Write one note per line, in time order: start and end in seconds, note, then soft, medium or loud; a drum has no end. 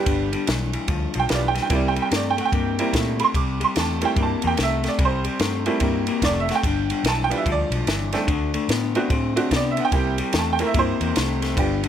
0.00 0.45 G3 medium
0.00 0.45 B3 medium
0.00 0.45 D4 medium
0.00 0.45 G4 medium
0.06 0.34 G1 medium
0.06 0.30 G2 medium
0.06 0.30 D3 medium
0.06 kick loud
0.06 ride medium
0.32 0.45 G2 medium
0.32 0.46 D3 medium
0.32 ride medium
0.47 0.76 B1 medium
0.47 0.71 G2 medium
0.47 0.71 E3 medium
0.47 snare loud
0.47 ride medium
0.73 0.87 G2 medium
0.73 0.88 E3 medium
0.73 ride medium
0.88 1.06 D2 loud
0.88 1.12 G2 medium
0.88 1.12 F3 medium
0.88 kick loud
0.88 ride medium
1.14 1.26 B1 medium
1.14 1.28 G2 medium
1.14 1.29 F3 medium
1.14 ride medium
1.20 1.31 G5 medium
1.29 1.58 B1 medium
1.29 1.53 G2 medium
1.29 1.53 E3 medium
1.29 1.68 G3 medium
1.29 1.71 B3 medium
1.29 1.71 D4 medium
1.29 1.71 F4 medium
1.29 snare loud
1.29 ride medium
1.34 1.46 D5 loud
1.48 1.59 G5 medium
1.55 1.69 G2 medium
1.55 1.69 E3 medium
1.55 snare soft
1.55 ride medium
1.62 1.73 G5 medium
1.69 1.98 C2 medium
1.69 1.94 C3 medium
1.69 1.94 G3 medium
1.69 1.94 G3 loud
1.69 1.94 A#3 medium
1.69 1.94 C4 medium
1.69 1.94 E4 medium
1.69 kick loud
1.69 ride medium
1.75 1.87 D5 medium
1.88 2.00 G5 medium
1.96 2.10 C3 medium
1.96 2.10 G3 medium
1.96 ride medium
2.02 2.14 G5 medium
2.11 2.39 G2 medium
2.11 2.35 C3 medium
2.11 2.35 A3 medium
2.11 snare loud
2.11 ride medium
2.16 2.28 D5 medium
2.30 2.42 G5 loud
2.37 2.51 C3 medium
2.37 2.52 A3 medium
2.37 2.43 F#5 medium
2.37 ride medium
2.45 2.82 G5 loud
2.52 2.80 G2 medium
2.52 2.76 C3 medium
2.52 2.76 A#3 medium
2.52 kick loud
2.52 ride medium
2.79 2.93 C3 medium
2.79 3.32 G3 medium
2.79 3.32 A#3 medium
2.79 2.93 A#3 medium
2.79 3.33 C4 medium
2.79 3.33 E4 medium
2.79 ride medium
2.93 3.21 A#2 medium
2.93 3.18 C3 medium
2.93 3.18 A3 medium
2.93 kick medium
2.93 snare loud
2.93 ride medium
3.20 3.34 C3 medium
3.20 3.34 A3 medium
3.20 ride medium
3.24 3.37 C6 loud
3.34 3.62 C2 loud
3.34 3.59 C3 medium
3.34 3.59 G3 medium
3.34 3.61 D6 medium
3.34 kick loud
3.34 ride medium
3.60 3.74 C3 medium
3.60 3.75 G3 medium
3.60 3.78 C6 medium
3.60 ride medium
3.76 4.04 E2 medium
3.76 3.99 C3 medium
3.76 4.00 A3 medium
3.76 4.03 A5 loud
3.76 snare loud
3.76 ride medium
4.01 4.15 C3 medium
4.01 4.55 G3 medium
4.01 4.16 A3 medium
4.01 4.55 A#3 medium
4.01 4.55 C4 medium
4.01 4.56 E4 medium
4.01 ride medium
4.05 4.18 G5 medium
4.16 4.34 G2 loud
4.16 4.41 C3 medium
4.16 4.41 A#3 medium
4.16 kick loud
4.16 ride medium
4.23 4.45 A5 medium
4.42 4.54 E2 medium
4.42 4.57 C3 medium
4.42 4.57 A#3 medium
4.42 ride medium
4.47 4.60 G5 medium
4.57 4.86 C2 loud
4.57 4.82 C3 medium
4.57 4.82 A3 loud
4.57 snare loud
4.57 ride medium
4.63 4.86 E5 loud
4.84 4.98 C3 medium
4.84 4.98 A3 medium
4.84 snare soft
4.84 ride medium
4.89 5.01 D5 loud
4.99 5.27 C2 loud
4.99 5.23 C3 medium
4.99 5.23 G3 loud
4.99 kick loud
4.99 ride medium
5.05 5.82 C5 loud
5.24 5.39 C3 medium
5.24 5.39 G3 medium
5.24 ride medium
5.39 5.68 G2 medium
5.39 5.64 C3 medium
5.39 5.64 A3 medium
5.39 snare loud
5.39 ride medium
5.66 5.80 C3 medium
5.66 6.20 G3 medium
5.66 5.80 A3 medium
5.66 6.20 A#3 medium
5.66 6.20 C4 medium
5.66 6.20 E4 medium
5.66 ride medium
5.80 6.09 G2 medium
5.80 6.05 C3 medium
5.80 6.05 A#3 medium
5.80 kick loud
5.80 ride medium
6.07 6.21 C3 medium
6.07 6.22 A#3 medium
6.07 ride medium
6.22 6.50 F1 loud
6.22 6.46 C3 medium
6.22 6.46 A3 loud
6.22 6.37 D5 loud
6.22 kick medium
6.22 snare loud
6.22 ride medium
6.40 6.52 E5 loud
6.49 6.63 C3 medium
6.49 6.63 A3 loud
6.49 6.54 F#5 medium
6.49 snare soft
6.49 ride medium
6.55 7.06 G5 medium
6.63 6.91 G1 loud
6.63 6.88 G2 medium
6.63 6.88 D3 loud
6.63 kick loud
6.63 ride medium
6.90 7.04 G2 medium
6.90 7.04 D3 medium
6.90 ride medium
7.04 7.32 B1 medium
7.04 7.28 G2 medium
7.04 7.29 E3 loud
7.04 snare loud
7.04 ride loud
7.08 7.20 A5 loud
7.24 7.35 G5 medium
7.30 7.44 G2 medium
7.30 7.44 E3 medium
7.30 7.44 G3 medium
7.30 7.44 B3 medium
7.30 7.44 D4 medium
7.30 7.45 F4 medium
7.30 ride medium
7.37 7.48 E5 medium
7.45 7.63 D2 medium
7.45 7.69 G2 medium
7.45 7.70 F3 loud
7.45 kick loud
7.45 ride medium
7.52 8.69 D5 loud
7.70 7.81 B1 medium
7.70 7.86 G2 medium
7.70 7.86 F3 medium
7.70 ride medium
7.86 8.14 G1 medium
7.86 8.11 G2 medium
7.86 8.11 E3 medium
7.86 snare loud
7.86 ride medium
8.13 8.27 G2 medium
8.13 8.27 E3 medium
8.13 8.27 A3 medium
8.13 8.27 C4 medium
8.13 8.27 D4 medium
8.13 8.27 A4 medium
8.13 snare soft
8.13 ride medium
8.27 8.56 D2 loud
8.27 8.51 D3 medium
8.27 8.52 A3 medium
8.27 kick loud
8.27 ride medium
8.54 8.68 D3 medium
8.54 8.68 A3 medium
8.54 ride medium
8.68 8.96 A2 medium
8.68 8.93 D3 medium
8.68 8.93 B3 medium
8.68 snare loud
8.68 ride medium
8.95 9.09 D3 medium
8.95 9.09 A3 medium
8.95 9.09 B3 medium
8.95 9.09 C4 medium
8.95 9.10 D4 medium
8.95 9.10 F#4 medium
8.95 ride medium
9.10 9.38 A2 loud
9.10 9.34 D3 medium
9.10 9.34 C4 medium
9.10 kick loud
9.10 ride medium
9.36 9.50 D3 medium
9.36 9.50 A3 medium
9.36 9.50 C4 medium
9.36 9.50 D4 medium
9.36 9.50 F#4 medium
9.36 ride medium
9.51 9.79 C3 loud
9.51 9.75 D3 medium
9.51 9.75 B3 loud
9.51 kick medium
9.51 snare loud
9.51 ride medium
9.56 9.67 D5 loud
9.71 9.82 E5 loud
9.77 9.91 D3 medium
9.77 9.92 B3 medium
9.77 9.83 F#5 medium
9.77 ride medium
9.85 10.35 G5 loud
9.92 10.20 C2 loud
9.92 10.16 C3 medium
9.92 10.16 G3 medium
9.92 10.16 A#3 medium
9.92 10.16 C4 medium
9.92 10.16 E4 medium
9.92 10.16 G4 medium
9.92 kick loud
9.92 ride medium
10.18 10.32 C3 medium
10.18 10.33 G3 medium
10.18 ride medium
10.33 10.61 E2 medium
10.33 10.57 C3 medium
10.33 10.57 A3 loud
10.33 snare loud
10.33 ride medium
10.39 10.50 A5 medium
10.53 10.64 G5 medium
10.59 10.73 C3 medium
10.59 10.74 A3 medium
10.59 10.73 A#3 medium
10.59 10.74 C4 medium
10.59 10.74 E4 medium
10.59 10.74 A#4 medium
10.59 ride medium
10.66 10.77 E5 loud
10.74 10.92 G2 loud
10.74 10.98 C3 medium
10.74 10.98 A#3 medium
10.74 kick loud
10.74 ride medium
10.79 11.88 E4 medium
10.79 11.57 C5 loud
11.01 11.11 E2 medium
11.01 11.15 C3 medium
11.01 11.15 A#3 medium
11.01 ride medium
11.16 11.58 C2 medium
11.16 11.39 C3 medium
11.16 11.40 A3 medium
11.16 snare loud
11.16 ride medium
11.42 11.56 C3 medium
11.42 11.56 A3 medium
11.42 snare soft
11.42 ride medium
11.56 11.84 G1 loud
11.56 11.80 G2 medium
11.56 11.81 D3 medium
11.56 11.81 B3 medium
11.56 11.81 D4 medium
11.56 11.81 F4 medium
11.56 11.82 G4 medium
11.56 kick loud
11.56 ride medium
11.83 11.88 G2 medium
11.83 11.88 D3 medium
11.83 ride medium